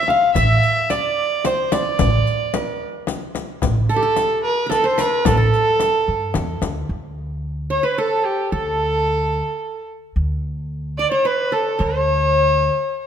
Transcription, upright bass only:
0, 0, Header, 1, 2, 480
1, 0, Start_track
1, 0, Tempo, 544959
1, 321, Time_signature, 3, 2, 24, 8
1, 11510, End_track
2, 0, Start_track
2, 0, Title_t, "Upright bass"
2, 0, Program_c, 0, 32
2, 311, Note_on_c, 0, 33, 90
2, 508, Note_off_c, 0, 33, 0
2, 1757, Note_on_c, 0, 33, 79
2, 1951, Note_off_c, 0, 33, 0
2, 3197, Note_on_c, 0, 33, 91
2, 3389, Note_off_c, 0, 33, 0
2, 4632, Note_on_c, 0, 33, 87
2, 4825, Note_off_c, 0, 33, 0
2, 5356, Note_on_c, 0, 43, 73
2, 5570, Note_off_c, 0, 43, 0
2, 5592, Note_on_c, 0, 40, 83
2, 5808, Note_off_c, 0, 40, 0
2, 5827, Note_on_c, 0, 38, 81
2, 6045, Note_off_c, 0, 38, 0
2, 6071, Note_on_c, 0, 38, 76
2, 6842, Note_off_c, 0, 38, 0
2, 7507, Note_on_c, 0, 38, 81
2, 8280, Note_off_c, 0, 38, 0
2, 8947, Note_on_c, 0, 38, 78
2, 9722, Note_off_c, 0, 38, 0
2, 10394, Note_on_c, 0, 38, 90
2, 11168, Note_off_c, 0, 38, 0
2, 11510, End_track
0, 0, End_of_file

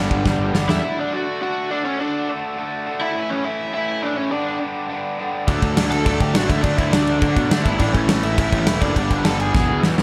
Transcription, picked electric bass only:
0, 0, Header, 1, 2, 480
1, 0, Start_track
1, 0, Tempo, 290416
1, 1377, Time_signature, 4, 2, 24, 8
1, 16576, End_track
2, 0, Start_track
2, 0, Title_t, "Picked electric bass"
2, 0, Program_c, 0, 34
2, 188, Note_on_c, 0, 31, 93
2, 371, Note_off_c, 0, 31, 0
2, 428, Note_on_c, 0, 31, 100
2, 611, Note_off_c, 0, 31, 0
2, 639, Note_on_c, 0, 31, 93
2, 834, Note_off_c, 0, 31, 0
2, 879, Note_on_c, 0, 31, 92
2, 1074, Note_off_c, 0, 31, 0
2, 1119, Note_on_c, 0, 40, 97
2, 1313, Note_off_c, 0, 40, 0
2, 9055, Note_on_c, 0, 38, 105
2, 9267, Note_off_c, 0, 38, 0
2, 9295, Note_on_c, 0, 38, 98
2, 9507, Note_off_c, 0, 38, 0
2, 9542, Note_on_c, 0, 38, 99
2, 9751, Note_off_c, 0, 38, 0
2, 9773, Note_on_c, 0, 38, 89
2, 9985, Note_off_c, 0, 38, 0
2, 10018, Note_on_c, 0, 38, 103
2, 10228, Note_off_c, 0, 38, 0
2, 10255, Note_on_c, 0, 38, 89
2, 10466, Note_off_c, 0, 38, 0
2, 10495, Note_on_c, 0, 33, 96
2, 10707, Note_off_c, 0, 33, 0
2, 10733, Note_on_c, 0, 38, 102
2, 10945, Note_off_c, 0, 38, 0
2, 10967, Note_on_c, 0, 38, 108
2, 11182, Note_off_c, 0, 38, 0
2, 11208, Note_on_c, 0, 38, 103
2, 11423, Note_off_c, 0, 38, 0
2, 11462, Note_on_c, 0, 38, 98
2, 11882, Note_off_c, 0, 38, 0
2, 11929, Note_on_c, 0, 50, 94
2, 12143, Note_off_c, 0, 50, 0
2, 12175, Note_on_c, 0, 47, 97
2, 12386, Note_off_c, 0, 47, 0
2, 12412, Note_on_c, 0, 50, 101
2, 12625, Note_off_c, 0, 50, 0
2, 12649, Note_on_c, 0, 31, 105
2, 12863, Note_off_c, 0, 31, 0
2, 12893, Note_on_c, 0, 33, 112
2, 13105, Note_off_c, 0, 33, 0
2, 13130, Note_on_c, 0, 33, 97
2, 13344, Note_off_c, 0, 33, 0
2, 13376, Note_on_c, 0, 33, 92
2, 13587, Note_off_c, 0, 33, 0
2, 13617, Note_on_c, 0, 33, 95
2, 13828, Note_off_c, 0, 33, 0
2, 13854, Note_on_c, 0, 33, 93
2, 14066, Note_off_c, 0, 33, 0
2, 14089, Note_on_c, 0, 33, 101
2, 14303, Note_off_c, 0, 33, 0
2, 14330, Note_on_c, 0, 28, 98
2, 14544, Note_off_c, 0, 28, 0
2, 14571, Note_on_c, 0, 30, 101
2, 14784, Note_off_c, 0, 30, 0
2, 14813, Note_on_c, 0, 31, 108
2, 15025, Note_off_c, 0, 31, 0
2, 15046, Note_on_c, 0, 31, 99
2, 15262, Note_off_c, 0, 31, 0
2, 15289, Note_on_c, 0, 31, 93
2, 15716, Note_off_c, 0, 31, 0
2, 15778, Note_on_c, 0, 28, 91
2, 15988, Note_off_c, 0, 28, 0
2, 16021, Note_on_c, 0, 38, 100
2, 16231, Note_off_c, 0, 38, 0
2, 16253, Note_on_c, 0, 40, 99
2, 16466, Note_off_c, 0, 40, 0
2, 16492, Note_on_c, 0, 40, 91
2, 16576, Note_off_c, 0, 40, 0
2, 16576, End_track
0, 0, End_of_file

